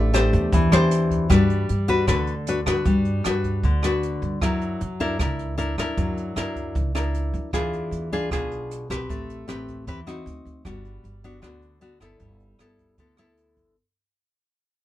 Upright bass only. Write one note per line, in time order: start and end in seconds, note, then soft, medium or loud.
0.00 0.29 A1 medium
0.33 0.51 E2 medium
0.52 0.71 E2 medium
0.72 1.26 E2 loud
1.30 1.67 G2 medium
1.70 2.06 G2 medium
2.08 2.62 D2 medium
2.66 2.85 G2 medium
2.85 3.22 G2 medium
3.25 3.61 G2 medium
3.63 4.18 D2 medium
4.22 4.42 G2 medium
4.42 4.78 F#2 medium
4.81 5.17 F#2 medium
5.19 5.74 C#2 medium
5.78 5.96 F#2 medium
5.98 6.34 F#2 medium
6.36 6.73 F#2 medium
6.75 7.30 C#2 medium
7.33 7.53 F#2 medium
7.53 7.90 E2 medium
7.91 8.28 E2 medium
8.31 8.86 B1 medium
8.90 9.09 B1 medium
9.09 9.46 A1 medium
9.48 9.84 A1 medium
9.87 10.24 E2 medium
10.26 10.44 D2 medium
10.45 10.67 D2 medium
10.65 11.01 G1 medium
11.04 11.40 G1 medium
11.43 11.97 D2 medium
12.01 12.19 G1 medium
12.20 12.57 G1 medium
12.59 12.96 G1 medium
12.98 13.53 D2 medium
13.57 13.75 G1 medium